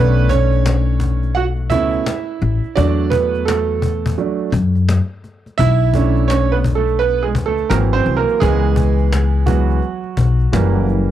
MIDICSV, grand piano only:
0, 0, Header, 1, 2, 480
1, 0, Start_track
1, 0, Tempo, 705882
1, 1882, Time_signature, 4, 2, 24, 8
1, 7555, End_track
2, 0, Start_track
2, 0, Title_t, "Grand piano"
2, 0, Program_c, 0, 0
2, 0, Note_on_c, 0, 57, 58
2, 0, Note_on_c, 0, 59, 81
2, 0, Note_on_c, 0, 61, 65
2, 0, Note_on_c, 0, 62, 64
2, 0, Note_on_c, 0, 71, 101
2, 192, Note_off_c, 0, 59, 0
2, 202, Note_off_c, 0, 61, 0
2, 203, Note_on_c, 0, 73, 104
2, 212, Note_off_c, 0, 71, 0
2, 212, Note_on_c, 0, 61, 76
2, 900, Note_off_c, 0, 61, 0
2, 916, Note_on_c, 0, 78, 96
2, 930, Note_on_c, 0, 66, 77
2, 944, Note_off_c, 0, 73, 0
2, 971, Note_off_c, 0, 78, 0
2, 983, Note_off_c, 0, 66, 0
2, 1152, Note_off_c, 0, 57, 0
2, 1154, Note_on_c, 0, 76, 95
2, 1160, Note_on_c, 0, 47, 49
2, 1162, Note_on_c, 0, 57, 47
2, 1165, Note_on_c, 0, 61, 57
2, 1167, Note_on_c, 0, 64, 80
2, 1377, Note_off_c, 0, 47, 0
2, 1378, Note_off_c, 0, 57, 0
2, 1380, Note_off_c, 0, 61, 0
2, 1851, Note_off_c, 0, 76, 0
2, 1856, Note_off_c, 0, 62, 0
2, 1857, Note_off_c, 0, 64, 0
2, 1873, Note_on_c, 0, 74, 94
2, 1878, Note_on_c, 0, 54, 61
2, 1883, Note_on_c, 0, 57, 53
2, 1886, Note_on_c, 0, 62, 80
2, 2109, Note_off_c, 0, 62, 0
2, 2109, Note_on_c, 0, 71, 83
2, 2123, Note_on_c, 0, 59, 69
2, 2125, Note_off_c, 0, 74, 0
2, 2346, Note_off_c, 0, 59, 0
2, 2349, Note_on_c, 0, 69, 75
2, 2357, Note_off_c, 0, 57, 0
2, 2363, Note_off_c, 0, 71, 0
2, 2367, Note_on_c, 0, 57, 55
2, 2573, Note_off_c, 0, 54, 0
2, 2809, Note_off_c, 0, 69, 0
2, 2817, Note_off_c, 0, 57, 0
2, 2841, Note_on_c, 0, 54, 48
2, 2842, Note_on_c, 0, 57, 44
2, 2844, Note_on_c, 0, 62, 53
2, 3057, Note_off_c, 0, 54, 0
2, 3058, Note_off_c, 0, 57, 0
2, 3059, Note_off_c, 0, 62, 0
2, 3792, Note_on_c, 0, 76, 120
2, 3807, Note_on_c, 0, 64, 96
2, 4037, Note_on_c, 0, 62, 53
2, 4040, Note_on_c, 0, 57, 53
2, 4045, Note_on_c, 0, 61, 61
2, 4257, Note_off_c, 0, 64, 0
2, 4269, Note_on_c, 0, 73, 94
2, 4274, Note_off_c, 0, 61, 0
2, 4284, Note_on_c, 0, 61, 68
2, 4291, Note_off_c, 0, 76, 0
2, 4432, Note_off_c, 0, 61, 0
2, 4433, Note_on_c, 0, 71, 84
2, 4441, Note_off_c, 0, 73, 0
2, 4447, Note_on_c, 0, 59, 67
2, 4470, Note_off_c, 0, 71, 0
2, 4483, Note_off_c, 0, 59, 0
2, 4592, Note_on_c, 0, 69, 82
2, 4597, Note_off_c, 0, 57, 0
2, 4608, Note_on_c, 0, 57, 70
2, 4752, Note_on_c, 0, 71, 94
2, 4754, Note_off_c, 0, 57, 0
2, 4762, Note_off_c, 0, 69, 0
2, 4767, Note_on_c, 0, 59, 70
2, 4906, Note_off_c, 0, 71, 0
2, 4913, Note_on_c, 0, 68, 75
2, 4914, Note_off_c, 0, 59, 0
2, 4930, Note_on_c, 0, 56, 60
2, 4950, Note_off_c, 0, 68, 0
2, 4965, Note_off_c, 0, 56, 0
2, 5071, Note_on_c, 0, 69, 87
2, 5085, Note_on_c, 0, 57, 62
2, 5212, Note_off_c, 0, 62, 0
2, 5225, Note_off_c, 0, 69, 0
2, 5232, Note_off_c, 0, 57, 0
2, 5232, Note_on_c, 0, 70, 91
2, 5235, Note_on_c, 0, 52, 56
2, 5242, Note_on_c, 0, 54, 50
2, 5245, Note_on_c, 0, 60, 61
2, 5247, Note_on_c, 0, 58, 69
2, 5270, Note_off_c, 0, 70, 0
2, 5282, Note_off_c, 0, 58, 0
2, 5392, Note_on_c, 0, 72, 87
2, 5395, Note_off_c, 0, 60, 0
2, 5405, Note_on_c, 0, 60, 67
2, 5552, Note_on_c, 0, 70, 83
2, 5553, Note_off_c, 0, 60, 0
2, 5562, Note_off_c, 0, 72, 0
2, 5566, Note_on_c, 0, 58, 63
2, 5695, Note_off_c, 0, 52, 0
2, 5698, Note_off_c, 0, 54, 0
2, 5706, Note_off_c, 0, 70, 0
2, 5713, Note_off_c, 0, 58, 0
2, 5713, Note_on_c, 0, 68, 98
2, 5716, Note_on_c, 0, 52, 67
2, 5721, Note_on_c, 0, 56, 82
2, 5724, Note_on_c, 0, 59, 69
2, 6410, Note_off_c, 0, 68, 0
2, 6412, Note_off_c, 0, 52, 0
2, 6416, Note_off_c, 0, 59, 0
2, 6417, Note_off_c, 0, 56, 0
2, 6434, Note_on_c, 0, 66, 74
2, 6437, Note_on_c, 0, 52, 51
2, 6440, Note_on_c, 0, 56, 44
2, 6443, Note_on_c, 0, 59, 57
2, 6445, Note_on_c, 0, 54, 61
2, 6655, Note_off_c, 0, 52, 0
2, 6657, Note_off_c, 0, 56, 0
2, 6659, Note_off_c, 0, 59, 0
2, 7157, Note_on_c, 0, 52, 60
2, 7159, Note_on_c, 0, 55, 50
2, 7164, Note_on_c, 0, 58, 61
2, 7371, Note_off_c, 0, 66, 0
2, 7376, Note_off_c, 0, 54, 0
2, 7555, Note_off_c, 0, 52, 0
2, 7555, Note_off_c, 0, 55, 0
2, 7555, Note_off_c, 0, 58, 0
2, 7555, End_track
0, 0, End_of_file